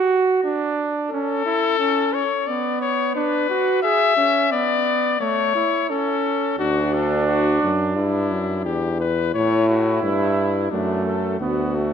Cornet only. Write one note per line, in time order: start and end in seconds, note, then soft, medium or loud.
1.11 2.15 A4 loud
2.13 2.49 C#5 medium
2.47 2.81 D5 medium
2.81 3.14 C#5 medium
3.15 3.82 B4 medium
3.83 4.50 E5 loud
4.52 5.20 D5 medium
5.21 5.88 C#5 medium
5.90 6.57 A4 medium
6.59 6.95 F#4 medium
6.94 7.27 A4 medium
7.27 7.71 F#4 medium
7.96 8.61 E4 medium
8.65 8.99 G4 medium
9.00 9.34 B4 medium
9.34 9.68 C#5 medium
9.69 10.04 F#4 medium
10.03 10.72 E4 medium
10.71 11.05 D4 medium
11.05 11.39 A4 medium
11.40 11.93 F#4 medium